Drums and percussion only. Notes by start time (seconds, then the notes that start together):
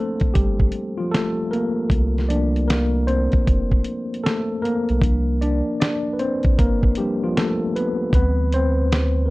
0.20 kick, closed hi-hat
0.35 kick, closed hi-hat
0.60 kick
0.72 closed hi-hat
1.14 snare, closed hi-hat
1.53 closed hi-hat
1.90 kick, closed hi-hat
2.18 snare
2.30 closed hi-hat
2.56 closed hi-hat
2.70 snare, closed hi-hat
3.08 closed hi-hat
3.32 kick, closed hi-hat
3.47 kick, closed hi-hat
3.72 kick
3.84 closed hi-hat
4.14 closed hi-hat
4.26 snare, closed hi-hat
4.65 closed hi-hat
4.89 closed hi-hat
5.02 kick, closed hi-hat
5.42 closed hi-hat
5.81 snare, closed hi-hat
6.19 closed hi-hat
6.43 kick, closed hi-hat
6.59 kick, closed hi-hat
6.83 kick
6.95 closed hi-hat
7.37 snare, closed hi-hat
7.76 closed hi-hat
8.13 kick, closed hi-hat
8.52 closed hi-hat
8.92 snare, closed hi-hat